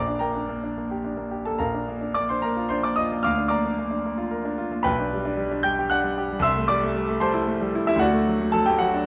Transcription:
0.00 1.56 A#1 medium
0.00 0.20 D5 medium
0.00 0.18 A#5 medium
0.00 0.22 D6 medium
0.08 0.30 D4 soft
0.19 0.44 A#3 soft
0.19 1.13 A#4 medium
0.19 1.13 G5 medium
0.19 1.16 A#5 medium
0.35 0.58 D4 soft
0.49 0.71 A#3 soft
0.64 0.85 D4 soft
0.78 0.99 A#3 soft
0.91 1.13 G4 soft
1.04 1.26 D4 soft
1.17 1.40 A#3 soft
1.31 1.54 G4 soft
1.45 1.60 A#3 soft
1.45 1.59 A4 medium
1.45 1.60 A5 medium
1.58 3.22 A#1 medium
1.58 2.12 A#4 medium
1.58 2.12 F5 soft
1.58 2.16 A#5 medium
1.74 1.97 D4 soft
1.88 2.11 A#3 soft
2.01 2.24 D4 soft
2.14 2.38 A#3 soft
2.14 2.28 D5 medium
2.14 2.29 D6 medium
2.29 2.52 D4 soft
2.29 2.43 C5 medium
2.29 2.43 C6 medium
2.42 2.66 A#3 soft
2.42 2.69 A#4 medium
2.42 2.70 A#5 medium
2.57 2.79 F4 soft
2.69 2.93 D4 soft
2.69 2.83 C5 medium
2.69 2.84 C6 medium
2.83 3.07 A#3 soft
2.83 2.98 D5 medium
2.83 2.98 D6 medium
2.96 3.20 F4 soft
2.96 3.23 D#5 medium
2.96 3.25 D#6 medium
3.12 3.26 A#3 soft
3.23 4.82 D2 medium
3.23 3.50 F5 medium
3.23 3.47 D6 medium
3.23 3.51 F6 medium
3.38 3.60 D4 soft
3.48 3.73 A#3 medium
3.48 4.40 D5 medium
3.48 4.40 A#5 medium
3.48 4.43 D6 medium
3.65 3.87 D4 soft
3.79 4.00 A#3 soft
3.91 4.13 D4 soft
4.06 4.27 A#3 medium
4.18 4.40 F4 medium
4.31 4.53 A#4 medium
4.45 4.67 D4 soft
4.58 4.80 F4 medium
4.72 4.86 A#3 soft
4.83 6.40 B1 medium
4.83 5.62 B4 medium
4.83 5.62 G5 medium
4.83 5.65 B5 loud
4.99 5.21 D4 medium
5.13 5.35 G3 medium
5.25 5.47 D4 medium
5.37 5.60 G3 medium
5.51 5.74 D4 medium
5.63 5.87 G3 medium
5.63 5.90 G5 medium
5.63 5.91 G6 loud
5.79 6.00 G4 medium
5.90 6.13 D4 medium
5.90 6.40 F#5 medium
5.90 6.43 F#6 loud
6.04 6.26 G3 medium
6.18 6.39 G4 medium
6.32 6.45 G3 medium
6.39 7.94 C2 medium
6.39 6.68 E5 medium
6.39 6.68 C6 medium
6.39 6.69 E6 loud
6.57 6.78 A3 medium
6.68 6.91 G3 medium
6.68 7.18 D5 medium
6.68 7.21 D6 loud
6.82 7.04 A3 medium
6.96 7.17 G3 medium
7.08 7.30 A3 medium
7.20 7.43 G3 medium
7.20 7.71 C5 medium
7.20 7.71 A5 medium
7.20 7.74 C6 loud
7.34 7.56 E4 medium
7.47 7.69 A3 medium
7.61 7.83 G3 medium
7.75 7.87 E4 medium
7.87 8.01 G3 medium
7.87 8.00 E4 medium
7.87 8.01 E5 loud
7.96 9.04 D2 medium
7.96 8.53 F#5 loud
8.01 8.50 F#4 medium
8.01 8.50 D5 medium
8.13 8.35 A3 medium
8.27 8.49 F#3 medium
8.40 8.62 A3 medium
8.52 8.76 F#3 medium
8.52 8.66 A4 medium
8.52 8.67 A5 loud
8.66 8.90 A3 medium
8.66 8.80 G4 medium
8.66 8.81 G5 medium
8.79 9.04 F#3 medium
8.79 9.06 F#4 medium
8.79 9.06 F#5 loud
8.94 9.06 D4 medium

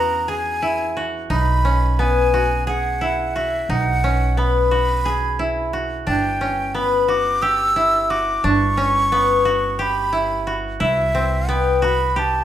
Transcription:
0.00 1.27 E2 medium
0.00 1.99 B3 medium
0.00 1.64 C#4 medium
0.00 0.62 E4 medium
0.00 0.96 F#4 medium
0.00 0.31 A#5 medium
0.28 2.25 G#4 medium
0.28 1.06 G#5 medium
0.62 1.36 E4 medium
0.97 2.33 F#4 medium
1.30 3.65 B1 medium
1.30 3.07 D#4 medium
1.30 2.01 B5 medium
1.65 4.03 C#4 medium
1.99 4.37 B3 medium
1.99 2.67 G#5 medium
2.34 3.35 F#4 medium
2.67 4.64 G#4 medium
2.67 3.38 F#5 medium
3.01 3.76 E4 medium
3.36 4.71 F#4 medium
3.36 3.71 E5 medium
3.69 6.03 B1 medium
3.69 5.45 D#4 medium
3.69 4.40 F#5 medium
4.04 6.13 C#4 medium
4.37 6.74 B3 medium
4.37 5.74 B5 medium
4.71 5.73 F#4 medium
5.06 7.03 G#4 medium
5.39 7.66 E4 medium
5.73 7.08 F#4 medium
6.07 8.41 G1 medium
6.07 6.47 D4 medium
6.07 6.76 G5 medium
6.41 8.50 C#4 medium
6.75 9.12 B3 medium
6.75 7.11 B5 medium
7.08 7.48 F#4 medium
7.08 7.44 D6 medium
7.42 8.16 G4 medium
7.42 8.12 E6 medium
7.76 10.02 E4 medium
8.10 9.45 F#4 medium
8.10 8.46 D6 medium
8.44 10.77 G1 medium
8.44 8.83 D4 medium
8.44 9.83 C#6 medium
8.77 11.21 C#4 medium
9.12 11.21 B3 medium
9.45 9.85 F#4 medium
9.79 10.53 G4 medium
9.79 10.57 B5 medium
10.13 10.80 E4 medium
10.47 11.82 F#4 medium
10.80 12.44 C2 medium
10.80 12.44 E4 medium
10.80 11.52 E5 medium
11.15 11.55 C4 medium
11.49 12.44 B3 medium
11.49 11.86 G5 medium
11.82 12.22 F#4 medium
11.82 12.20 B5 medium
12.16 12.44 G4 medium
12.16 12.44 A5 medium

